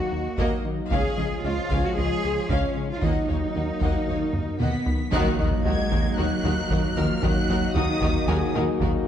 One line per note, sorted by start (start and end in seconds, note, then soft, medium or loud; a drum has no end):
0.00 0.91 F#3 medium
0.00 0.88 A#3 medium
0.00 0.91 A#3 soft
0.00 0.91 D#4 medium
0.00 0.39 F#4 medium
0.00 0.87 F#4 medium
0.00 0.91 D#5 medium
0.12 0.28 D#2 medium
0.38 0.54 D#2 medium
0.38 0.46 D#2 medium
0.38 0.55 D#3 medium
0.38 0.63 A#3 medium
0.38 0.63 D#5 medium
0.38 0.63 F#5 medium
0.38 taiko medium
0.65 0.81 D#3 medium
0.91 0.99 C#2 medium
0.91 1.07 C#2 medium
0.91 1.07 C#3 medium
0.91 3.02 F3 medium
0.91 3.02 G#3 medium
0.91 2.98 G#3 medium
0.91 1.16 C#4 medium
0.91 3.02 F4 medium
0.91 2.98 F4 medium
0.91 1.40 G#4 medium
0.91 3.02 C#5 medium
0.91 1.16 F5 medium
0.91 taiko medium
1.17 1.26 C#2 medium
1.17 1.34 C#2 medium
1.17 1.33 F3 medium
1.17 1.27 C#4 soft
1.17 1.25 D#5 medium
1.17 1.26 D#5 medium
1.43 1.52 C#2 soft
1.43 1.60 C#2 medium
1.43 1.60 C#4 medium
1.43 1.53 C#4 medium
1.43 1.84 F4 medium
1.43 2.99 D#5 soft
1.43 1.51 F5 medium
1.43 1.52 F5 soft
1.70 1.78 C#2 medium
1.70 1.86 C#2 medium
1.70 1.86 C#3 medium
1.70 1.96 C#4 medium
1.70 1.95 F5 medium
1.70 taiko medium
1.85 1.97 F#4 medium
1.96 2.05 C#2 medium
1.96 2.13 C#2 medium
1.96 2.13 F3 medium
1.96 2.05 C#4 medium
1.96 2.48 G#4 loud
1.96 2.04 D#5 medium
1.96 2.06 D#5 medium
2.24 2.40 C#2 medium
2.49 2.58 C#2 medium
2.49 2.66 C#2 medium
2.49 2.66 C#3 medium
2.49 2.89 C#4 medium
2.49 2.74 C#4 medium
2.49 4.04 C#5 medium
2.49 2.74 F5 medium
2.49 taiko medium
2.77 2.92 C#3 medium
2.91 3.03 F4 medium
3.02 3.11 D#2 medium
3.02 3.18 D#2 medium
3.02 3.18 D#3 medium
3.02 5.10 F#3 medium
3.02 4.82 A#3 medium
3.02 3.27 A#3 medium
3.02 4.60 D#4 medium
3.02 5.10 D#4 medium
3.02 4.82 F#4 medium
3.02 5.13 A#4 medium
3.02 3.27 D#5 medium
3.02 5.10 D#5 medium
3.02 3.27 F#5 medium
3.02 taiko medium
3.29 3.37 D#2 soft
3.29 3.45 D#2 medium
3.29 3.44 F#3 medium
3.29 3.37 A#3 soft
3.29 3.37 C#5 soft
3.29 3.37 F5 soft
3.55 3.71 D#2 medium
3.55 3.64 D#2 soft
3.55 3.63 A#3 soft
3.55 3.71 D#4 medium
3.55 3.63 D#5 soft
3.55 3.64 F#5 soft
3.81 3.97 D#2 medium
3.81 3.89 D#2 medium
3.81 3.97 D#3 medium
3.81 4.06 A#3 medium
3.81 4.06 D#5 medium
3.81 5.09 F5 soft
3.81 4.06 F#5 medium
3.81 taiko medium
4.07 4.16 D#2 soft
4.07 4.24 D#2 medium
4.07 4.23 F#3 medium
4.07 4.16 A#3 soft
4.07 4.17 C#5 soft
4.07 4.15 F5 soft
4.33 4.50 D#2 medium
4.33 taiko low-mid medium
4.60 4.76 D#2 medium
4.60 4.68 D#2 medium
4.60 4.76 D#3 medium
4.60 4.85 A#3 soft
4.60 5.09 B3 medium
4.60 4.85 D#5 medium
4.60 4.85 F#5 medium
4.60 5.09 B6 medium
4.60 taiko mid medium
4.86 5.02 D#3 medium
4.86 taiko low medium
5.11 5.37 D#2 medium
5.11 5.28 D#2 loud
5.11 5.37 D#3 loud
5.11 5.28 D#3 medium
5.11 9.08 F#3 medium
5.11 5.62 F#3 medium
5.11 9.08 A#3 medium
5.11 9.08 D#4 medium
5.11 5.37 D#4 loud
5.11 5.37 F#4 medium
5.11 9.08 F#4 medium
5.11 5.37 A#4 medium
5.11 9.08 D#5 medium
5.11 5.61 F#6 medium
5.11 taiko loud
5.11 impact medium
5.38 5.46 D#2 medium
5.38 5.55 D#2 medium
5.38 5.46 D#3 medium
5.38 5.55 F#3 medium
5.38 5.46 D#4 medium
5.38 6.93 D#4 soft
5.38 5.47 F#4 medium
5.38 5.47 A#4 medium
5.38 6.93 D#5 medium
5.64 5.72 D#2 medium
5.64 5.81 D#2 medium
5.64 5.73 D#3 medium
5.64 6.18 G#3 medium
5.64 5.73 D#4 medium
5.64 5.81 D#4 medium
5.64 5.74 F#4 medium
5.64 5.75 A#4 medium
5.64 7.20 F#5 soft
5.64 6.18 G#6 loud
5.64 taiko low medium
5.91 6.07 D#2 loud
5.91 5.99 D#2 medium
5.91 5.99 D#3 medium
5.91 6.07 D#3 medium
5.91 5.99 D#4 medium
5.91 6.00 F#4 medium
5.91 6.00 A#4 medium
5.91 taiko medium
6.17 6.25 D#2 medium
6.17 6.34 D#2 medium
6.17 6.26 D#3 medium
6.17 6.34 F#3 medium
6.17 6.97 F#3 medium
6.17 6.26 D#4 medium
6.17 6.26 F#4 medium
6.17 6.26 A#4 medium
6.17 6.95 F#6 loud
6.44 6.52 D#2 medium
6.44 6.60 D#2 medium
6.44 6.52 D#3 medium
6.44 6.52 D#4 medium
6.44 6.53 F#4 medium
6.44 6.53 A#4 medium
6.70 6.78 D#2 medium
6.70 6.86 D#2 medium
6.70 6.79 D#3 medium
6.70 6.86 D#3 medium
6.70 6.79 D#4 medium
6.70 6.79 F#4 medium
6.70 6.79 A#4 medium
6.70 taiko medium
6.97 7.05 D#2 medium
6.97 7.13 D#3 medium
6.97 7.05 D#3 medium
6.97 7.23 F3 medium
6.97 7.05 D#4 medium
6.97 7.05 F#4 medium
6.97 7.05 A#4 medium
6.97 7.23 F6 medium
7.22 7.30 D#2 medium
7.22 7.39 D#2 medium
7.22 7.31 D#3 medium
7.22 7.39 D#3 medium
7.22 7.76 F#3 medium
7.22 7.31 D#4 medium
7.22 7.31 F#4 medium
7.22 7.31 A#4 medium
7.22 7.76 F#6 loud
7.22 taiko loud
7.49 7.57 D#2 medium
7.49 7.65 D#2 medium
7.49 7.57 D#3 medium
7.49 7.65 F#3 medium
7.49 7.57 D#4 medium
7.49 7.57 F#4 medium
7.49 7.57 A#4 medium
7.75 7.83 D#2 medium
7.75 7.91 D#2 medium
7.75 8.53 D#3 medium
7.75 7.84 D#3 medium
7.75 7.84 D#4 medium
7.75 7.92 D#4 medium
7.75 7.84 F#4 medium
7.75 7.84 A#4 medium
7.75 8.53 D#6 loud
7.75 taiko low medium
8.01 8.18 D#2 loud
8.01 8.10 D#2 medium
8.01 8.18 D#3 loud
8.01 8.10 D#3 medium
8.01 8.10 D#4 medium
8.01 8.10 F#4 medium
8.01 8.10 A#4 medium
8.01 taiko medium
8.28 8.36 D#2 medium
8.28 8.44 D#2 medium
8.28 8.37 D#3 medium
8.28 8.44 F#3 medium
8.28 8.37 D#4 medium
8.28 8.37 F#4 medium
8.28 9.08 G#4 medium
8.28 8.37 A#4 medium
8.28 9.08 G#5 medium
8.54 8.62 D#2 medium
8.54 8.71 D#2 medium
8.54 8.63 D#3 medium
8.54 8.63 D#4 medium
8.54 8.62 F#4 medium
8.54 8.63 A#4 medium
8.80 8.89 D#2 medium
8.80 8.97 D#2 loud
8.80 8.97 D#3 medium
8.80 8.89 D#3 medium
8.80 8.89 D#4 medium
8.80 8.90 F#4 medium
8.80 8.90 A#4 medium
8.80 taiko medium